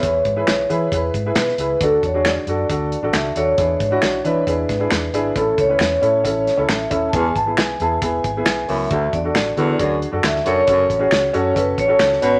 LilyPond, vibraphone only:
\new Staff \with { instrumentName = "Vibraphone" } { \time 4/4 \key e \mixolydian \tempo 4 = 135 cis''2 b'4 b'4 | a'8 cis''8 d''2 e''8 cis''8~ | cis''2 b'2 | a'8 cis''8 r2 e''8 e''16. a''32 |
gis''8 a''8 gis''8 a''8 gis''8 gis''4 e''8~ | e''8 d''2 r8 e''8 cis''8~ | cis''2 b'8 cis''4 cis''8 | }